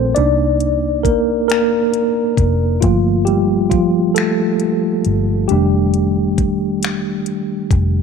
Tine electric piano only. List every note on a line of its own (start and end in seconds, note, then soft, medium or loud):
0.00 0.12 G3 soft
0.00 0.18 A3 medium
0.00 0.13 C4 medium
0.00 0.12 F4 soft
0.00 0.18 A4 medium
0.00 0.16 C5 medium
0.15 1.05 A#3 soft
0.15 1.02 D4 medium
0.15 2.79 D#4 soft
0.15 1.07 D5 medium
1.03 1.47 A#3 medium
1.03 1.47 A#4 medium
1.48 2.46 A#3 medium
1.48 2.45 A#4 medium
2.81 3.04 F3 medium
2.81 4.12 A3 soft
2.81 4.12 A#3 soft
2.81 2.83 F4 medium
2.81 3.69 F4 medium
3.25 3.69 G3 medium
3.25 3.67 G4 medium
3.70 4.14 F3 medium
3.70 4.16 F4 medium
4.15 5.46 A3 medium
4.15 5.45 A4 medium
5.48 6.79 D#3 soft
5.48 7.68 G3 medium
5.48 6.79 A3 soft
5.48 6.79 D4 medium
5.48 7.67 G4 medium